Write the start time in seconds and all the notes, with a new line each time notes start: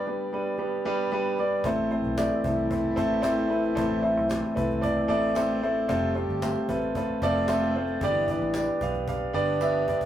Already playing: G2 G3 B3 D4 G4 B4 D5
0.07 G3 B3 D4 G4 B4
0.33 G3 B3 D4 G4 B4
0.58 G3 B3 D4 G4 B4
0.85 G3 B3 D4 G4 B4
1.12 G3 B3 D4 G4 B4
1.39 G3 B3 D4 G4 D5
1.64 A1 A2 E3 A3 C4 E4 A4 C5, cajon bass
1.77 cajon slap
1.91 A3 C4 E4 A4 C5, cajon slap
2.04 B1, cajon slap
2.17 A3 C4 E4 A4 D5, cajon slap, tambourine
2.31 cajon slap
2.44 C2 A3 C4 E4 A4 C5, cajon bass
2.57 cajon slap
2.70 A3 C4 E4 A4 C5, cajon bass
2.96 A1 A3 C4 E4 A4 C5, cajon bass
3.12 cajon slap
3.22 A3 C4 E4 A4 C5, cajon slap, tambourine
3.38 cajon slap
3.49 A3 C4 E4 A4 B4, cajon slap
3.64 cajon slap
3.75 A1 A2 A3 C4 E4 A4 C5, cajon bass
3.92 cajon slap
4.02 A3 C4 E4 A4 C5, cajon slap
4.17 B1, cajon slap
4.28 A3 C4 E4 A4 C5, cajon slap, tambourine
4.45 cajon slap
4.55 C2 A3 C4 E4 A4 B4, cajon bass
4.70 cajon slap
4.81 A3 C4 E4 A4 D5, cajon bass
5.08 A1 A3 C4 E4 A4 D5, cajon slap
5.24 cajon slap
5.35 A3 C4 E4 A4 C5, cajon slap, tambourine
5.50 cajon slap
5.62 A3 C4 E4 A4 C5, cajon slap
5.76 cajon slap
5.88 F1 G3 A3 C4 F4 G4 A4 C5, cajon bass
6.04 cajon slap
6.15 A3 C4 F4 A4 C5, cajon slap
6.29 G1, cajon slap
6.42 A3 C4 F4 A4 C5, cajon slap, tambourine
6.56 cajon slap
6.68 A1 A3 C4 F4 A4 B4, cajon bass
6.81 cajon slap
6.95 A3 C4 F4 A4 B4, cajon bass
7.22 F1 F3 A3 C4 F4 A4 D5, cajon bass
7.35 cajon slap
7.48 A3 C4 F4 A4 C5, cajon slap, tambourine
7.61 cajon slap
7.74 A3 C4 F4 A4 C5, cajon slap
7.87 cajon slap
8.01 G1 G2 E3 B3 D4 E4 G4 B4 D5, cajon bass
8.14 cajon slap
8.28 B3 D4 G4 B4 D5, cajon bass
8.41 A1, cajon slap
8.54 B3 D4 G4 B4 D5, cajon slap, tambourine
8.68 cajon slap
8.81 B1 B3 D4 G4 B4 F5, cajon bass
8.94 cajon slap
9.08 B3 D4 G4 B4 F5, cajon bass
9.20 cajon slap
9.33 G1 D3 B3 D4 G4 B4 D5, cajon slap
9.48 cajon slap
9.61 B3 D4 G4 B4 E5, cajon slap, tambourine
9.88 B3 D4 G4 B4 D5, cajon bass
10.01 cajon bass